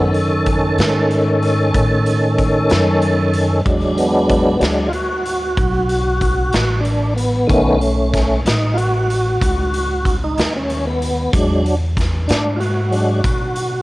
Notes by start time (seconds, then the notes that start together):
Already playing: F#2 D#3 B3 C#4 A4
0.14 closed hi-hat
0.46 kick, closed hi-hat
0.78 G#2, snare, closed hi-hat
1.11 closed hi-hat
1.42 closed hi-hat
1.74 A2, kick, closed hi-hat
2.06 closed hi-hat
2.38 kick, closed hi-hat
2.69 F#2, snare, closed hi-hat
3.01 closed hi-hat
3.33 closed hi-hat
3.65 E2 F#3 G#3 D4, kick, closed hi-hat
3.97 B3, closed hi-hat
4.29 B3, kick, closed hi-hat
4.59 D2 F#3 G#3 D4, snare, closed hi-hat
4.88 F4
4.93 F#4, closed hi-hat
5.26 closed hi-hat
5.57 B1, kick, closed hi-hat
5.89 closed hi-hat
6.21 kick, closed hi-hat
6.53 A1, snare, closed hi-hat
6.80 D4
6.85 closed hi-hat
7.16 B3, closed hi-hat
7.47 B1 D#3 A3 B3 C#4, kick, closed hi-hat
7.81 closed hi-hat
8.13 kick, snare, closed hi-hat
8.45 A1 D#4, snare, closed hi-hat
8.74 F4 F#4, closed hi-hat
9.10 closed hi-hat
9.42 C#2, kick, closed hi-hat
9.74 closed hi-hat
10.05 kick, closed hi-hat
10.24 D#4
10.38 D#2, snare, closed hi-hat
10.56 C#4
10.70 closed hi-hat
10.87 B3
11.02 closed hi-hat
11.33 E2 F#3 G#3 D4, kick, closed hi-hat
11.66 closed hi-hat
11.97 kick, snare, closed hi-hat
12.28 G#2 D4, snare, closed hi-hat
12.56 F4 F#4
12.60 closed hi-hat
12.91 F#3 G#3 D4, closed hi-hat
13.24 B2, kick, closed hi-hat
13.56 closed hi-hat